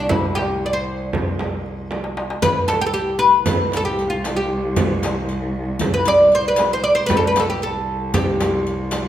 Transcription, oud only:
0.09 0.35 E4 medium
0.35 0.65 G4 medium
0.66 0.73 D5 medium
0.73 1.98 C5 medium
2.42 2.68 B4 medium
2.68 2.81 A4 medium
2.81 2.86 G4 medium
2.86 2.93 A4 medium
2.94 3.18 G4 medium
3.19 3.73 B4 medium
3.77 3.85 A4 medium
3.85 4.12 G4 medium
4.10 4.38 F4 medium
4.37 5.26 G4 medium
5.94 6.07 B4 medium
6.08 6.34 D5 loud
6.35 6.47 C5 medium
6.48 6.73 B4 medium
6.73 6.83 C5 medium
6.84 6.95 D5 medium
6.95 7.06 C5 medium
7.06 7.16 B4 medium
7.17 7.27 A4 medium
7.27 7.39 B4 medium
7.40 7.49 A4 medium
7.50 7.63 G4 medium
7.63 8.14 A4 medium
8.14 9.07 G4 medium

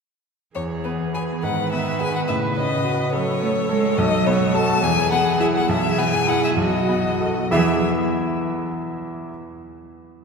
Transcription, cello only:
0.56 1.45 E3 soft
1.43 2.31 D#3 soft
2.29 3.15 C#3 soft
3.14 3.42 F#3 soft
3.42 3.50 A3 soft
3.70 3.99 G#3 medium
3.97 4.85 F#3 medium
4.83 5.69 E3 medium
5.70 6.56 E3 soft
6.58 7.29 F#3 soft
7.52 7.84 E3 soft

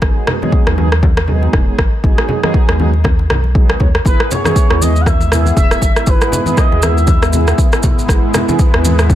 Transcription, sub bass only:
0.02 0.12 G#1 loud
0.67 1.48 D#2 loud
1.53 1.72 D#1 medium
1.79 1.89 G#1 loud
2.04 2.14 G#1 medium
2.68 3.29 D#2 loud
3.30 3.75 B1 medium
3.80 3.99 D#2 loud
4.05 4.16 G#1 loud
4.70 5.52 D#2 loud
5.57 5.76 D#1 loud
5.82 5.92 G#1 loud
6.07 6.17 G#1 medium
6.72 7.54 D#2 loud
8.09 8.19 G#1 loud
8.74 9.15 D#2 loud

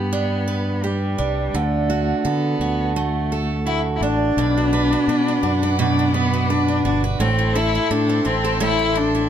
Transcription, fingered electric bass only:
0.00 1.14 G2 medium
1.19 1.48 C2 medium
1.54 2.12 D2 loud
2.25 2.54 D3 medium
2.60 3.98 D2 medium
4.01 4.30 A1 medium
4.37 4.95 B1 loud
5.08 5.37 B2 medium
5.43 6.80 F#2 medium
6.85 7.14 G1 medium
7.20 7.78 A1 loud
7.91 8.19 A2 medium
8.26 9.29 A1 medium

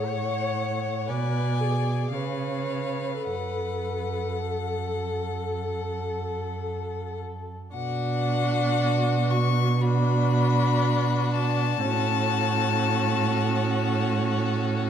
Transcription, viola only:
0.08 1.08 C#5 medium
1.09 1.62 B4 soft
1.60 2.15 G#4 soft
2.13 3.25 C#5 soft
3.25 7.14 A4 soft
7.74 9.76 D4 medium
9.81 11.78 D4 medium
11.82 14.90 C#4 medium

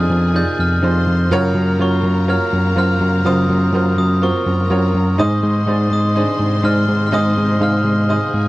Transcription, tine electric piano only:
0.10 0.41 F2 loud
0.59 0.79 F2 medium
0.83 1.03 F2 loud
1.07 1.27 F2 medium
1.31 1.51 F#2 loud
1.55 1.76 F#2 loud
1.80 2.00 F#2 medium
2.04 2.35 F#2 loud
2.53 2.73 F#2 loud
2.77 2.97 F#2 loud
3.01 3.21 F#2 loud
3.25 3.45 F#2 loud
3.49 3.69 F#2 loud
3.73 3.93 F#2 loud
3.97 4.29 F#2 loud
4.46 4.66 F#2 medium
4.70 4.90 F#2 loud
4.95 5.15 F#2 loud
5.19 5.39 G#2 loud
5.43 5.63 G#2 loud
5.67 5.87 G#2 loud
5.91 6.22 G#2 medium
6.40 6.60 G#2 medium
6.64 6.84 G#2 loud
6.88 7.08 G#2 loud
7.13 7.33 G#2 loud
7.37 7.57 G#2 loud
7.61 7.81 G#2 loud
7.85 8.16 G#2 loud
8.34 8.48 G#2 medium

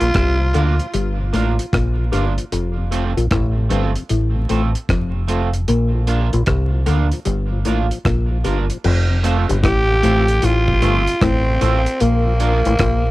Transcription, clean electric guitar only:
0.54 0.73 A#3 medium
0.54 0.74 D4 medium
0.54 0.74 F4 medium
0.54 0.74 A#4 loud
1.33 1.52 A#3 medium
1.33 1.53 D4 medium
1.33 1.53 F4 medium
1.33 1.53 A#4 medium
2.12 2.32 A#3 medium
2.12 2.32 D4 medium
2.12 2.32 F4 medium
2.12 2.32 A#4 medium
2.91 3.11 A3 medium
2.91 3.11 C4 medium
2.91 3.11 F4 medium
2.91 3.12 A4 medium
3.70 3.89 A3 medium
3.70 3.90 C4 medium
3.70 3.90 F4 medium
3.70 3.90 A4 medium
4.49 4.69 A3 medium
4.49 4.69 C4 medium
4.49 4.69 F4 medium
4.49 4.69 A4 medium
5.28 5.47 A3 medium
5.28 5.48 C4 medium
5.28 5.48 F4 medium
5.28 5.48 A4 medium
6.07 6.27 A#3 medium
6.07 6.27 D4 medium
6.07 6.27 F4 medium
6.07 6.28 A#4 medium
6.86 7.06 A#3 medium
6.86 7.06 D4 medium
6.86 7.06 F4 medium
6.86 7.07 A#4 medium
7.65 7.85 A#3 medium
7.65 7.85 D4 medium
7.65 7.85 F4 medium
7.65 7.86 A#4 medium
8.44 8.64 A#3 medium
8.44 8.64 D4 medium
8.44 8.65 F4 medium
8.44 8.65 A#4 medium
9.23 9.43 A3 medium
9.23 9.43 C4 medium
9.23 9.43 F4 loud
9.23 9.44 A4 loud
10.03 10.22 A3 medium
10.03 10.22 C4 medium
10.03 10.22 F4 loud
10.03 10.23 A4 loud
10.82 11.01 A3 medium
10.82 11.01 C4 medium
10.82 11.02 F4 medium
10.82 11.02 A4 medium
11.61 11.80 A3 medium
11.61 11.80 C4 medium
11.61 11.81 F4 medium
11.61 11.81 A4 loud
12.40 12.59 A#3 medium
12.40 12.59 D4 medium
12.40 12.60 F4 loud
12.40 12.60 A#4 loud

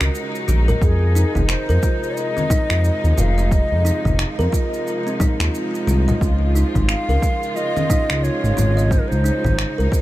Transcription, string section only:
0.00 0.78 C#3 medium
0.00 0.77 F#3 medium
0.00 10.02 G#3 medium
0.00 6.17 D#4 medium
0.82 6.17 C3 medium
0.82 10.02 F3 medium
6.21 10.02 C#3 medium
6.21 8.88 F4 medium
8.91 10.02 D#4 medium

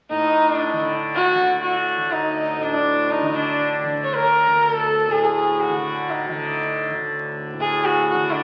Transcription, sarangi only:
0.10 0.51 D#4 medium
0.51 0.82 D4 medium
1.15 1.60 F#4 loud
1.63 2.13 F#4 medium
2.12 2.64 D#4 medium
2.63 3.13 D4 medium
3.11 3.38 D#4 medium
3.36 3.86 D4 medium
4.04 4.16 C#5 medium
4.14 4.63 A#4 medium
4.63 4.74 A#4 medium
4.74 5.14 A4 medium
5.12 5.53 G#4 medium
5.53 5.62 G#4 medium
5.60 6.12 F#4 medium
6.10 6.85 D#4 medium
7.61 7.87 G#4 medium
7.86 8.09 F#4 medium
8.10 8.35 F#4 medium
8.33 8.43 D4 medium

